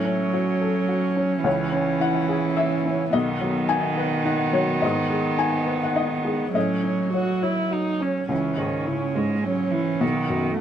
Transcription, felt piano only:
Already playing: A2 E5
0.05 C#4
0.33 F#4 C#5
0.61 A4
0.89 F#4
1.16 C#4
1.44 C#2 C#5
1.73 C#4
2.00 E4 F#5
2.29 G#4
2.57 E4 E5
2.86 C#4
3.13 B1 D#5
3.41 F#3
3.69 D#4 G#5
3.98 B4
4.25 D#4 F#5
4.53 F#3 C#5
4.82 G#2 D#5
5.10 G#3
5.37 D#4 G#5
5.66 B4
5.83 F#5
5.95 D#4 D#5
6.25 G#3
6.54 A2 D#5
6.83 C#4
7.13 F#4 C#5
7.42 C#5
7.71 F#4
8.00 C#4
8.29 C#2
8.58 G#2
8.86 E4
9.15 G#2
9.44 C#4
9.72 E4
10.00 B1
10.29 F#2
10.57 F#4

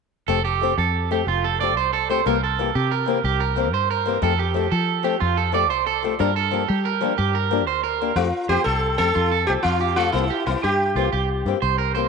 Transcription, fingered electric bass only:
0.28 F1
0.78 F2
1.27 F1
1.76 C2
2.26 C2
2.75 C3
3.24 C2
3.72 G2
4.22 F2
4.72 F3
5.21 F2
5.70 C2
6.20 G2
6.70 G3
7.19 G2
7.67 D2
8.16 F2
8.49 F2
8.66 C2
8.99 F2
9.16 F2
9.48 C2
9.65 F2
10.14 C2
10.47 C2
10.64 G2
10.95 C2
11.13 C2
11.45 G2
11.62 C2

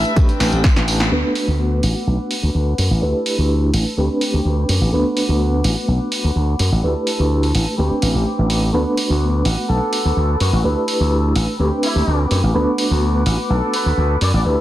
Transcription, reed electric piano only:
Already playing: A3 D4 E4 G4 B4
0.16 A3 C4 D4 G4 B4
1.11 A3 B3 D4 F#4 B4
3.01 A3 D4 E4 G4 B4
3.97 A3 C4 D4 G4 B4
4.92 A3 B3 D4 F#4 B4
6.82 A3 D4 E4 G4 B4
7.78 A3 C4 D4 G4 B4
8.73 A3 B3 D4 F#4 B4
10.63 A3 D4 E4 G4 B4
11.59 A3 C4 D4 G4 B4
12.54 A3 B3 D4 F#4 B4
14.44 A3 D4 E4 G4 B4

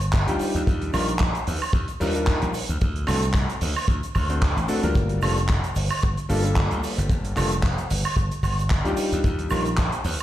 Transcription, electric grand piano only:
0.27 G3 D4 D#4 F4 G4
0.93 G3 D4 D#4 F4 A#4
2.00 G3 D4 D#4 F4 A#4
2.15 G3 D4 D#4 F4 A#4
3.07 A3 C4 D4 F#4 A4
4.29 A3 C4 D4 F#4 C5
4.68 A3 C4 D4 F#4 A4
4.83 G3 A#3 D4 F4 A#4
5.22 G3 A#3 D4 F4 A4
6.29 G3 A#3 D4 F4 A4
6.43 G3 A#3 D4 F4 A4
7.35 G3 A#3 D4 F4 A4
8.84 G3 D4 D#4 F4 G4
9.50 G3 D4 D#4 F4 A#4

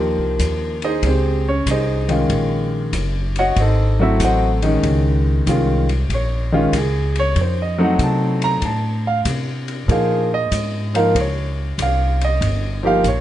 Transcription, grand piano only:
Already playing: F3 A#3 D#4 G4
0.84 D#4 G#4 C5 D#5
1.06 C4 G4 G#4 C5
1.49 C#4 C#5
1.71 D#4 G#4 C5 D#5
2.09 D#3 G#3 C#4 F4
3.39 F#4 C#5 D#5 F#5
3.60 D#4 A4 C5 D#5
3.99 F#3 A3 C4 E4 F#4 E5
4.24 F#4 C5 D#5 F#5
4.62 D#3 G#3 C#4 D#4
5.47 D#3 G#3 C#4 F4
6.14 C#5
6.52 D#3 G#3 C#4 F4
6.78 G#4
7.19 C#5
7.41 C5
7.62 D#5
7.78 F#3 A3 C4 D#4
7.84 F#5
8.03 A5
8.44 A#5
8.65 A5
9.07 F5
9.88 F3 A#3 D#4 G#4 F5
10.34 D#5
10.94 F3 A#3 D#4 A#4 F5
11.16 C5
11.20 C#5
11.82 F5
12.25 D#5
12.83 F3 A#3 D#4 G4 F5
13.08 C#5

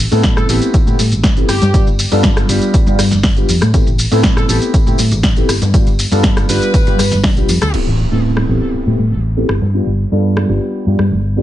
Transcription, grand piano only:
0.11 A3 B3 C4 E4 A4
0.49 A3 B3 C4 E4 G4
0.86 A3 B3 C4 E4 G4
1.36 A3 B3 C4 E4 G4
1.74 G3 B3 D4 F4 G4
2.11 G3 B3 D4 F4 A4
2.49 G3 B3 D4 F4 G4
2.86 G3 B3 D4 F4 G4
3.36 G3 B3 D4 F4 G4
3.73 A3 B3 C4 E4 G4
4.11 A3 B3 C4 E4 A4
4.48 A3 B3 C4 E4 G4
4.86 A3 B3 C4 E4 G4
5.36 A3 B3 C4 E4 G4
5.74 G3 B3 D4 F4 G4
6.11 G3 B3 D4 F4 A4
6.48 G3 B3 D4 F4 G4
6.86 G3 B3 D4 F4 G4
7.36 G3 B3 D4 F4 G4
7.74 A3 B3 C4 E4 G4
8.12 A3 B3 C4 E4 A4
8.49 A3 B3 C4 E4 G4
8.86 A3 B3 C4 E4 G4
9.36 A3 B3 C4 E4 G4
9.74 G3 B3 D4 F4 G4
10.11 G3 B3 D4 F4 A4
10.48 G3 B3 D4 F4 G4
10.86 G3 B3 D4 F4 G4
11.36 G3 B3 D4 F4 G4

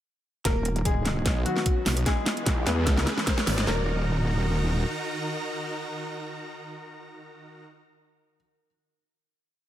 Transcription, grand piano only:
0.45 A#3 A#4
0.85 G#3 G#4
1.46 F#3 F#4
2.06 G#3 G#4
2.67 B3 B4
3.67 A#4

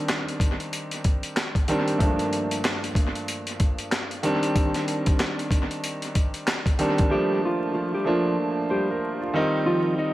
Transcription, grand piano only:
Already playing: D#3 G3 C4 D4
1.68 D#3 G3 C4 D4
1.98 G2 F3 A3 A#3 D4
4.23 D#3 G3 C4 D4
6.79 D#3 G3 C4 D4
7.10 F3 A3 A#3 D4
8.05 F3 A3 A#3 D4
8.70 C5
8.90 A#4
9.21 F4
9.33 D#3 G3 C4 D#4

